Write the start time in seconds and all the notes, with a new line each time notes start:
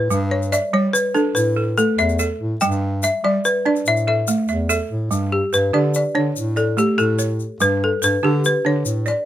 Already playing: A4 B4 E5
0.10 G2 G3, shaker
0.31 C#5
0.42 shaker
0.52 D5 E5, shaker
0.73 G3 C#5
0.93 B4, shaker
1.14 D4 A4, shaker
1.35 A2 B4, shaker
1.56 A4
1.78 A3 A4, shaker
1.98 E2 E5, shaker
2.09 shaker
2.19 A4 E5, shaker
2.40 A2
2.61 G2 G3 G5, shaker
2.71 shaker
3.03 E5, shaker
3.24 G3 D5
3.45 B4, shaker
3.65 D4 D5
3.76 shaker
3.86 A2 E5, shaker
3.97 shaker
4.07 A4 E5
4.28 A3, shaker
4.48 E2 E5, shaker
4.69 A4 E5, shaker
4.90 A2
5.11 G2 G3, shaker
5.32 G4
5.53 G2 B4, shaker
5.73 D3 D4 G4 D5
5.94 D5, shaker
6.15 D3 D4 C#5
6.36 A2, shaker
6.56 A4 D5, shaker
6.77 A3 G4, shaker
6.98 A2 A4, shaker
7.19 C#5, shaker
7.40 shaker
7.60 G2 G3 B4, shaker
7.84 A4
8.02 G2 B4, shaker
8.23 D3 D4 G4
8.44 B4, shaker
8.65 D3 D4 C#5
8.85 A2, shaker
9.06 D5, shaker